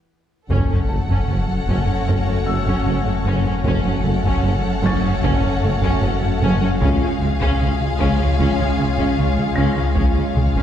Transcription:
0.49 double bass section F#1, tuba F#1, sub bass F#1, analog synth bass F#2, cello section F#2, synth drone A3 C#4 F#4 C#5, french horn section C#4 A4, viola section C#4, violin section A4 F#5, taiko, sub drop
0.70 analog synth bass F#2, cello section F#2, viola section C#4
0.89 tuba F#1, double bass section F#1, analog synth bass F#2, cello section F#2, viola section A3, felt piano A5
1.09 analog synth bass F#2, cello section F#2, viola section C#4, taiko
1.28 double bass section F#1, tuba F#1, analog synth bass F#2, cello section F#2, viola section C#4
1.48 analog synth bass F#3
1.67 double bass section F#1, tuba F#1, analog synth bass F#2, cello section F#2, viola section C#4, taiko
1.87 analog synth bass F#2, cello section F#2, viola section C#4
2.07 tuba F#1, double bass section F#1, analog synth bass F#2, cello section F#2, viola section C#4, french horn section C#4 A4, taiko
2.27 analog synth bass F#2, cello section F#2, viola section C#4
2.46 tuba F#1, double bass section F#1, cello section F#2, analog synth bass F#3, viola section A3, felt piano E6
2.66 analog synth bass F#2, cello section F#2, viola section C#4, taiko
2.87 tuba F#1, double bass section F#1, cello section F#2, analog synth bass F#3, viola section C#4
3.05 cello section F#2, analog synth bass F#2, viola section A3
3.25 tuba F#1, double bass section F#1, cello section F#2, analog synth bass F#2, viola section C#4
3.45 cello section F#2, analog synth bass F#3, viola section C#4
3.65 double bass section F#1, sub bass F#1, tuba F#1, cello section F#2, analog synth bass F#2, synth drone A3 C#4 F#4 C#5, french horn section C#4 A4, viola section C#4, violin section A4 F#5, taiko
3.85 cello section F#2, analog synth bass F#2, viola section C#4
4.05 double bass section F#1, tuba F#1, analog synth bass F#2, cello section F#2, viola section A3
4.24 analog synth bass F#2, cello section F#2, viola section C#4, taiko
4.43 double bass section F#1, tuba F#1, cello section F#2, analog synth bass F#2, viola section C#4
4.63 analog synth bass F#3
4.83 double bass section F#1, tuba F#1, cello section F#2, analog synth bass F#2, viola section C#4, felt piano C#6 A6, taiko
5.04 cello section F#2, analog synth bass F#2, viola section C#4
5.23 double bass section F#1, tuba F#1, cello section F#2, analog synth bass F#2, viola section C#4, french horn section C#4 A4, taiko
5.42 cello section F#2, analog synth bass F#2, viola section C#4
5.62 double bass section F#1, tuba F#1, cello section F#2, analog synth bass F#3, viola section A3
5.82 cello section F#2, analog synth bass F#2, viola section C#4, taiko
6.01 double bass section F#1, tuba F#1, cello section F#2, analog synth bass F#3, viola section C#4
6.22 cello section F#2, analog synth bass F#2, viola section A3
6.42 double bass section F#1, tuba F#1, analog synth bass F#2, cello section F#2, viola section C#4
6.61 cello section F#2, analog synth bass F#3, viola section C#4
6.81 double bass section C#2, analog synth bass C#2, sub bass C#2, tuba C#2, cello section C#3, synth drone G#3 C#4 F4 C#5, viola section C#4, french horn section C#4 F4, violin section G#4 F5, taiko
7.01 analog synth bass C#2, cello section C#3, viola section C#4
7.21 double bass section C#2, tuba C#2, analog synth bass C#2, cello section C#3, viola section G#3
7.40 analog synth bass C#2, cello section C#3, viola section C#4, taiko
7.60 analog synth bass C#2, double bass section C#2, tuba C#2, cello section C#3, viola section C#4
7.81 analog synth bass C#3
8.00 tuba C#2, double bass section C#2, analog synth bass C#2, cello section C#3, viola section C#4, taiko
8.20 analog synth bass C#2, cello section C#3, viola section C#4
8.39 double bass section C#2, analog synth bass C#2, tuba C#2, cello section C#3, french horn section C#4 F4, viola section C#4, taiko
8.59 analog synth bass C#2, cello section C#3, viola section C#4
8.79 double bass section C#2, tuba C#2, cello section C#3, analog synth bass C#3, viola section G#3
8.98 analog synth bass C#2, cello section C#3, viola section C#4, taiko
9.17 tuba C#2, double bass section C#2, cello section C#3, analog synth bass C#3, viola section C#4
9.37 analog synth bass C#2, cello section C#3, viola section G#3
9.56 double bass section C#2, tuba C#2, analog synth bass C#2, cello section C#3, viola section C#4, felt piano A#6
9.76 analog synth bass C#3, cello section C#3, viola section C#4
9.95 sub bass C#2, double bass section C#2, tuba C#2, analog synth bass C#2, cello section C#3, synth drone G#3 C#4 F4 C#5, viola section C#4, french horn section C#4 F4, violin section G#4 F5, taiko
10.15 analog synth bass C#2, cello section C#3, viola section C#4
10.36 tuba C#2, double bass section C#2, analog synth bass C#2, cello section C#3, viola section G#3, taiko mid
10.56 analog synth bass C#2, cello section C#3, viola section C#4, taiko

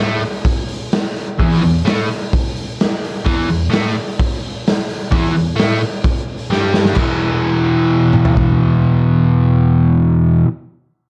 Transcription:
0.00 overdriven electric guitar A2 A3
0.20 open hi-hat
0.45 kick, open hi-hat
0.68 open hi-hat
0.92 snare, open hi-hat
1.16 open hi-hat
1.38 overdriven electric guitar E2 E3, kick, open hi-hat
1.62 overdriven electric guitar E2, open hi-hat
1.86 overdriven electric guitar A2 A3, snare, open hi-hat
2.11 open hi-hat
2.33 kick, open hi-hat
2.56 open hi-hat
2.80 snare, open hi-hat
3.04 open hi-hat
3.25 overdriven electric guitar E2 E3, kick, open hi-hat
3.50 overdriven electric guitar E2, open hi-hat
3.70 overdriven electric guitar A2 A3, open hi-hat
3.74 snare
3.97 open hi-hat
4.19 kick, open hi-hat
4.43 open hi-hat
4.66 snare, open hi-hat
4.90 open hi-hat
5.10 overdriven electric guitar E2 E3, kick, open hi-hat
5.33 overdriven electric guitar E2, open hi-hat
5.55 overdriven electric guitar A2 A3, snare, open hi-hat
5.81 open hi-hat
6.04 kick, open hi-hat
6.28 open hi-hat
6.50 overdriven electric guitar G2 G3, snare
6.74 snare
6.85 snare
6.94 overdriven electric guitar E2 B2 E3, kick, crash
8.13 mid tom
8.25 floor tom
8.37 kick

